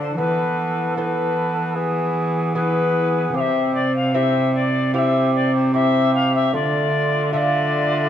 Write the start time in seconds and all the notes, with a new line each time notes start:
Already playing: D3 D4 F4 A4
0.00 C5
0.17 E3 B3 A4 B4
0.96 B3 E4 A4 C5
1.00 B4
1.75 B3 G#4
2.55 B3 E4 G#4 B4
3.34 C3 C4 G4 F5
3.40 E5
3.74 D5
3.95 F5
4.14 C4 E4 G4 E5
4.54 D5
4.94 C4 E4 G4 E5 F5
5.35 D5
5.55 C5
5.74 C4 E4 G4 E5
6.14 F5
6.34 E5
6.53 D3 A3 F4 D5
7.32 A3 F4 E5
7.36 D5